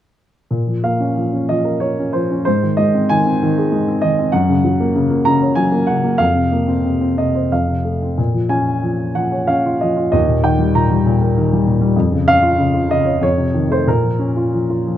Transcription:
0.51 A#2
0.67 F3
0.83 A#3 F5
1.00 C#4
1.16 F3
1.33 C#4
1.49 F3 D#5
1.64 A#4
1.80 A#3 C#5
1.99 C#4
2.13 F3 C5
2.31 C#4
2.45 G#2 C5
2.63 D#3
2.77 G#3 D#5
2.94 C4
3.09 D#3 G#5
3.27 C4
3.43 D#3
3.58 G#4
3.72 G#3
3.88 C4
4.02 D#3 D#5
4.19 C4
4.32 F#2 F#5
4.49 C#3
4.65 F#3
4.80 A#3
4.96 C#3
5.10 A#3
5.25 C#3 A#5
5.41 C#5
5.55 F#3 G#5
5.72 A#3
5.87 C#3 F#5
6.03 A#3
6.18 F2 F5
6.35 C3
6.52 A#3
6.68 C4
6.85 C3
7.01 C4
7.18 C3 D#5
7.35 C5
7.52 F2 F5
7.68 C3
7.85 A3
8.02 C4
8.18 A#2
8.34 F3
8.49 C#4 G#5
8.83 F3
9.15 F3 F#5
9.32 C#5
9.47 C#4 F5
9.66 F4
9.81 F3 D#5
9.96 F4
10.12 D#2 D#5
10.28 A#2
10.43 D#3 G5
10.59 G3
10.75 A#2 A#5
10.90 G3
11.06 A#2
11.22 A#4
11.38 D#3
11.53 G3
11.67 A#2
11.81 G3
11.96 F2
12.12 C#3
12.27 C#4 F5
12.43 F4
12.59 C#3
12.73 F4
12.89 C#3 D#5
13.05 C#5
13.21 F2 C#5
13.38 C3
13.54 D#3
13.70 A3 C5
13.87 A#2 A#4
14.03 F3
14.19 C#4
14.36 F4
14.53 F3
14.70 F4
14.87 F3

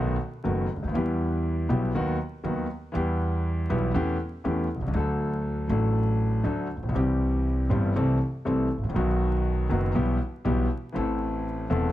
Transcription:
Already playing: B1 B2 D#3 A3 B3 F#4
0.44 F#1 F#2 D#3 A3 B3 F#4
0.76 C#2
0.83 D2
0.87 D#2
0.92 E2 E3 G3 B3
0.96 G4
1.69 B1 B2 E3 G3 B3 G4
1.94 D#2 D#3 F#3 B3 F#4
2.43 D#2 D#3 F#3 B3 F#4
2.92 E2 E3 G3 B3
2.96 G4
3.69 B1 B2 E3 G3 B3 G4
3.94 E2 E3 A3 C#4 G4
4.44 E2 E3 A3 C#4 G4
4.76 B1
4.81 C2
4.88 C#2
4.93 D2 D3 F#3 A3 D4 A4
5.68 A1 A2 F#3 A3 D4
5.72 A4
6.43 D2 D3 F#3 A3 D4 A4
6.76 A1
6.83 A#1
6.89 B1 E3
6.94 C2 C3 G3 C4 G4
7.69 G1 G2 E3 G3 C4 G4
7.96 C2 C3 E3 A3 C4 A4
8.45 C2 C3 E3 A3 C4 A4
8.77 G#1
8.83 A1
8.89 A#1
8.94 B1 B2 D#3 F#3 B3 F#4
9.69 F#1 F#2 D#3 F#3 B3 F#4
9.95 B1 B2 E3 G3 B3 G4
10.45 B1 B2 E3 G3 B3 G4
10.92 A1 A2 E3 A3 C4 A4
11.70 E1 E2 E3 A3 C4 A4

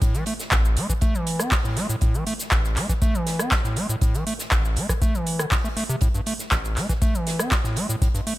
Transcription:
0.02 A2, kick, closed hi-hat, shaker
0.14 E3, closed hi-hat, shaker
0.26 A3, closed hi-hat, open hi-hat
0.39 snare, closed hi-hat, shaker
0.51 A1, kick, snare, clap, closed hi-hat, shaker
0.65 shaker
0.77 A3, closed hi-hat, open hi-hat
0.89 E3, kick, closed hi-hat, shaker
1.01 A3, kick, closed hi-hat, shaker
1.14 E3, shaker
1.27 closed hi-hat, open hi-hat
1.39 C4, cross-stick, closed hi-hat, shaker
1.51 E3, kick, snare, clap, closed hi-hat, open hi-hat, shaker
1.65 A2, shaker
1.77 A3, snare, closed hi-hat, open hi-hat
1.89 A2, closed hi-hat, shaker
2.01 A2, kick, closed hi-hat, shaker
2.14 E3, closed hi-hat, shaker
2.26 A3, closed hi-hat, open hi-hat
2.39 snare, closed hi-hat, shaker
2.51 A1, kick, snare, clap, closed hi-hat, shaker
2.65 closed hi-hat, shaker
2.76 A3, snare, clap, closed hi-hat, open hi-hat
2.88 E3, kick, snare, closed hi-hat, shaker
3.02 A3, kick, closed hi-hat, shaker
3.14 E3, shaker
3.26 snare, closed hi-hat, open hi-hat
3.39 C4, cross-stick, closed hi-hat, shaker
3.51 E3, kick, snare, clap, closed hi-hat, shaker
3.64 A2, snare, shaker
3.76 A3, closed hi-hat, open hi-hat
3.89 A2, closed hi-hat, shaker
4.01 A2, kick, closed hi-hat, shaker
4.14 E3, closed hi-hat, shaker
4.27 A3, closed hi-hat, open hi-hat
4.39 snare, closed hi-hat, shaker
4.51 A1, kick, snare, clap, closed hi-hat, shaker
4.65 shaker
4.76 A3, closed hi-hat, open hi-hat
4.89 E3, kick, cross-stick, closed hi-hat, shaker
5.02 A3, kick, closed hi-hat, shaker
5.14 E3, shaker
5.26 closed hi-hat, open hi-hat
5.39 D3, cross-stick, closed hi-hat, shaker
5.51 A2, kick, snare, clap, closed hi-hat, open hi-hat, shaker
5.64 A3, shaker
5.77 A3, snare, closed hi-hat, open hi-hat
5.89 C3, closed hi-hat, shaker
6.01 A2, kick, closed hi-hat, shaker
6.14 G2, closed hi-hat, shaker
6.26 A3, closed hi-hat, open hi-hat
6.39 snare, closed hi-hat, shaker
6.51 A1, kick, snare, clap, closed hi-hat, shaker
6.64 closed hi-hat, shaker
6.76 A3, snare, clap, closed hi-hat, open hi-hat
6.89 E3, kick, snare, closed hi-hat, shaker
7.02 A3, kick, closed hi-hat, shaker
7.14 E3, shaker
7.27 snare, closed hi-hat, open hi-hat
7.39 C4, cross-stick, closed hi-hat, shaker
7.51 E3, kick, snare, clap, closed hi-hat, shaker
7.64 A2, snare, shaker
7.76 A3, closed hi-hat, open hi-hat
7.89 A2, closed hi-hat, shaker
8.02 A2, kick, closed hi-hat, shaker
8.14 G2, closed hi-hat, shaker
8.27 A3, closed hi-hat, open hi-hat

